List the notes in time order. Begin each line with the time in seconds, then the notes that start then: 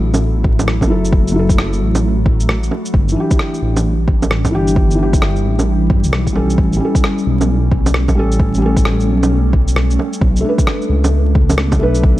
Already playing: F#3 A3 E4 A4
0.00 A1
0.14 low bongo, shaker
0.44 kick
0.59 low bongo, shaker
0.68 cross-stick
0.81 kick, low bongo, shaker
0.88 F#1 F#3 E4
0.92 A4
1.05 shaker
1.12 F#4, kick
1.27 shaker
1.32 F#3 E4
1.39 A4
1.49 kick, shaker
1.58 cross-stick
1.73 shaker
1.81 A1
1.95 low bongo, shaker
2.26 kick
2.40 shaker
2.49 cross-stick
2.63 shaker
2.71 low bongo
2.85 shaker
2.94 G1 E3 G3 D4, kick
3.08 E3, shaker
3.16 D4 G4
3.31 kick, shaker
3.39 cross-stick
3.54 shaker
3.62 A1
3.76 low bongo, shaker
4.08 kick
4.22 low bongo, shaker
4.31 cross-stick
4.45 kick, low bongo, shaker
4.51 G1 E3 D4 G4
4.67 shaker
4.76 E4, kick
4.91 shaker
4.95 E3 D4
5.03 G4
5.13 kick, shaker
5.22 cross-stick
5.36 shaker
5.44 A1
5.59 low bongo, shaker
5.90 G2, kick
6.04 B1, shaker
6.13 cross-stick
6.27 kick, shaker
6.33 G3 C#4 A4, low bongo
6.50 shaker
6.58 A1 A3 C#4, kick
6.73 G3, shaker
6.80 C#4
6.85 A4
6.95 kick, shaker
7.04 cross-stick
7.18 shaker
7.27 B1
7.41 low bongo, shaker
7.72 kick
7.86 low bongo, shaker
7.94 cross-stick
8.08 kick, low bongo, shaker
8.15 A1 G3 C#4
8.19 A4
8.32 shaker
8.40 kick
8.54 G3, shaker
8.62 C#4 A4
8.76 kick, shaker
8.85 cross-stick
9.00 shaker
9.08 B1
9.23 low bongo, shaker
9.53 kick
9.68 shaker
9.76 cross-stick
9.90 shaker
9.99 low bongo
10.13 shaker
10.21 B1 B3 D4, kick
10.36 shaker
10.41 A3 D4
10.49 B4
10.58 kick, shaker
10.67 cross-stick
10.82 shaker
10.90 C#2
11.04 low bongo, shaker
11.35 kick
11.50 low bongo, shaker
11.58 cross-stick
11.72 kick, low bongo, shaker
11.79 B1 A3 D4 B4
11.95 shaker
12.03 kick